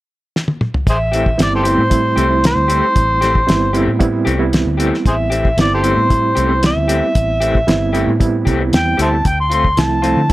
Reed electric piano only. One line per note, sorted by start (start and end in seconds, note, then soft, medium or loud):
1.38 1.61 G3 medium
1.38 1.61 B3 medium
1.38 1.61 C4 medium
1.38 1.61 E4 medium
1.64 1.87 G3 medium
1.64 1.87 B3 medium
1.64 1.87 C4 medium
1.64 1.87 E4 medium
1.90 2.24 G3 medium
1.90 2.24 A3 medium
1.90 2.24 C4 medium
1.90 2.24 E4 medium
2.29 3.19 G3 medium
2.29 3.19 A3 medium
2.29 3.19 C4 medium
2.29 3.19 E4 medium
3.47 3.70 G3 medium
3.47 3.70 B3 medium
3.47 3.70 C4 medium
3.47 3.70 E4 medium
3.73 3.96 G3 medium
3.73 3.96 B3 medium
3.73 3.96 C4 medium
3.73 3.97 E4 medium
3.99 4.34 G3 medium
3.99 4.33 B3 medium
3.99 4.34 C4 medium
3.99 4.34 E4 loud
4.39 5.29 G3 medium
4.39 5.29 B3 medium
4.39 5.29 C4 medium
4.39 5.29 E4 medium
5.58 5.80 G3 medium
5.58 5.80 B3 medium
5.58 5.80 C4 medium
5.58 5.80 E4 medium
5.84 6.06 G3 medium
5.84 6.06 B3 medium
5.84 6.06 C4 medium
5.84 6.07 E4 medium
6.10 6.44 G3 medium
6.10 6.44 A3 medium
6.10 6.44 C4 medium
6.10 6.44 E4 medium
6.49 7.39 G3 medium
6.49 7.39 B3 medium
6.49 7.39 C4 medium
6.49 7.39 E4 medium
7.67 7.90 G3 medium
7.67 7.90 B3 medium
7.67 7.90 C4 medium
7.67 7.90 E4 loud
7.93 8.16 G3 medium
7.93 8.16 B3 medium
7.93 8.16 C4 medium
7.93 8.16 E4 medium
8.20 8.53 G3 medium
8.20 8.53 B3 medium
8.20 8.53 C4 medium
8.20 8.54 E4 medium
8.59 9.24 G3 medium
8.59 9.25 B3 medium
8.59 9.25 C4 medium
8.59 9.25 E4 medium
9.77 9.99 F3 medium
9.77 10.00 A3 medium
9.77 10.00 C4 medium
9.77 10.00 E4 medium
10.03 10.25 F3 medium
10.03 10.26 A3 medium
10.03 10.26 C4 medium
10.03 10.26 E4 medium
10.30 10.33 A3 medium
10.30 10.33 E4 medium